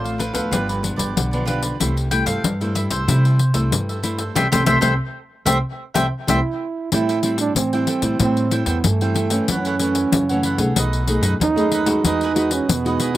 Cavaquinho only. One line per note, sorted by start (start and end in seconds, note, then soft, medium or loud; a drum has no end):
0.04 0.18 A4 soft
0.04 0.18 C5 soft
0.04 0.19 F5 soft
0.18 0.34 D4 soft
0.18 0.34 A4 soft
0.18 0.33 C5 medium
0.18 0.32 F5 medium
0.34 0.50 A4 medium
0.34 0.50 C5 medium
0.34 0.50 F5 medium
0.51 0.66 F4 medium
0.51 0.66 G4 medium
0.51 0.67 B4 medium
0.51 0.67 D5 medium
0.68 0.82 G4 soft
0.68 0.82 B4 soft
0.68 0.83 D5 soft
0.83 muted cavaquinho stroke soft
0.96 1.30 G4 soft
0.96 1.29 B4 medium
0.96 1.29 D5 medium
1.31 1.45 G4 soft
1.31 1.46 B4 soft
1.31 1.46 D5 soft
1.46 1.62 F4 medium
1.46 1.62 G4 medium
1.46 1.62 B4 medium
1.46 1.61 D5 medium
1.62 1.78 G4 soft
1.62 1.78 B4 soft
1.62 1.78 D5 soft
1.80 1.95 E4 medium
1.80 1.95 A4 medium
1.80 1.95 C5 medium
1.80 1.95 E5 medium
1.97 muted cavaquinho stroke soft
2.11 2.26 E4 medium
2.11 2.27 A4 soft
2.11 2.26 C5 medium
2.11 2.27 E5 medium
2.27 2.59 A4 medium
2.27 2.58 C5 medium
2.61 2.75 A4 soft
2.61 2.75 C5 soft
2.61 2.75 E5 soft
2.75 2.90 E4 soft
2.75 2.91 A4 soft
2.75 2.90 C5 soft
2.75 2.89 E5 medium
2.90 3.07 A4 medium
2.90 3.07 C5 medium
2.90 3.06 E5 medium
3.09 3.23 E4 medium
3.09 3.23 A4 medium
3.09 3.24 C5 medium
3.09 3.24 E5 medium
3.25 3.38 A4 soft
3.25 3.38 C5 soft
3.25 3.39 E5 soft
3.39 muted cavaquinho stroke soft
3.54 3.87 A4 soft
3.54 3.86 C5 medium
3.54 3.86 E5 medium
3.89 4.02 A4 soft
3.89 4.03 C5 soft
3.89 4.03 E5 soft
4.03 4.18 E4 medium
4.03 4.19 A4 medium
4.03 4.18 C5 medium
4.03 4.18 E5 medium
4.19 4.35 A4 soft
4.19 4.34 C5 soft
4.19 4.34 E5 soft
4.35 4.46 A4 medium
4.35 4.46 C5 medium
4.35 4.46 E5 medium
4.52 4.63 A4 medium
4.52 4.63 C5 medium
4.52 4.63 E5 medium
4.67 4.78 A4 medium
4.67 4.78 C5 medium
4.67 4.78 E5 medium
4.82 4.93 A4 medium
4.82 4.93 C5 medium
4.82 4.93 E5 medium
5.46 5.58 A4 medium
5.46 5.58 C5 medium
5.46 5.57 E5 medium
5.95 6.06 A4 medium
5.95 6.06 C5 medium
5.95 6.06 E5 medium
6.28 6.39 A4 medium
6.28 6.39 C5 medium
6.28 6.39 E5 medium
6.92 7.07 A4 medium
6.92 7.07 C5 medium
6.92 7.08 E5 medium
6.92 7.08 G5 medium
7.09 7.18 A4 medium
7.09 7.18 C5 medium
7.09 7.18 E5 medium
7.09 7.18 G5 medium
7.23 7.71 A4 soft
7.23 7.71 C5 medium
7.23 7.71 E5 soft
7.23 7.72 G5 medium
7.73 7.87 C5 soft
7.73 7.88 E5 soft
7.73 7.87 G5 soft
7.88 8.03 A4 medium
7.88 8.03 C5 medium
7.88 8.03 E5 medium
7.88 8.02 G5 medium
8.03 8.19 C5 soft
8.03 8.19 E5 soft
8.03 8.19 G5 soft
8.20 8.50 A4 medium
8.20 8.50 C5 medium
8.20 8.51 E5 medium
8.20 8.51 G5 medium
8.51 8.65 A4 soft
8.51 8.65 C5 soft
8.51 8.65 E5 medium
8.51 8.66 G5 medium
8.66 8.76 A4 medium
8.66 8.76 C5 medium
8.66 8.76 E5 medium
8.66 8.77 G5 medium
9.02 9.14 C5 soft
9.02 9.15 E5 soft
9.02 9.15 G5 soft
9.14 9.30 A4 medium
9.14 9.31 C5 medium
9.14 9.30 E5 medium
9.14 9.30 G5 medium
9.31 9.47 C5 soft
9.31 9.47 E5 soft
9.31 9.46 G5 soft
9.49 9.64 E4 medium
9.49 9.64 A4 medium
9.49 9.64 C#5 medium
9.49 9.65 F#5 medium
9.66 9.74 E4 medium
9.66 9.74 A4 medium
9.66 9.75 C#5 medium
9.66 9.75 F#5 medium
9.80 10.27 E4 medium
9.80 10.27 A4 medium
9.80 10.28 C#5 medium
9.80 10.28 F#5 medium
10.29 10.43 A4 soft
10.29 10.43 C#5 soft
10.29 10.44 F#5 medium
10.43 10.59 E4 medium
10.43 10.59 A4 medium
10.43 10.59 C#5 medium
10.43 10.57 F#5 medium
10.58 10.75 A4 soft
10.58 10.75 C#5 soft
10.58 10.74 F#5 soft
10.76 11.06 D#4 medium
10.76 11.07 A4 medium
10.76 11.07 B4 medium
10.76 11.08 D#5 medium
11.07 11.22 D#4 soft
11.07 11.23 A4 soft
11.07 11.23 B4 medium
11.07 11.23 D#5 medium
11.23 11.33 D#4 medium
11.23 11.33 A4 medium
11.23 11.33 B4 medium
11.23 11.33 D#5 medium
11.58 11.72 A4 soft
11.58 11.72 B4 soft
11.58 11.72 D#5 soft
11.72 11.87 D#4 medium
11.72 11.88 A4 medium
11.72 11.88 B4 medium
11.72 11.87 D#5 medium
11.88 12.04 B4 soft
11.88 12.03 D#5 medium
12.05 12.20 E4 medium
12.05 12.20 G#4 medium
12.05 12.20 B4 medium
12.05 12.21 D#5 medium
12.23 12.31 E4 medium
12.23 12.31 G#4 medium
12.23 12.31 B4 medium
12.23 12.32 D#5 medium
12.38 12.84 E4 soft
12.38 12.84 G#4 soft
12.38 12.85 B4 medium
12.38 12.85 D#5 medium
12.86 13.00 G#4 soft
12.86 13.00 B4 soft
12.86 13.00 D#5 medium
13.00 13.15 E4 medium
13.00 13.16 G#4 medium
13.00 13.16 B4 medium
13.00 13.15 D#5 medium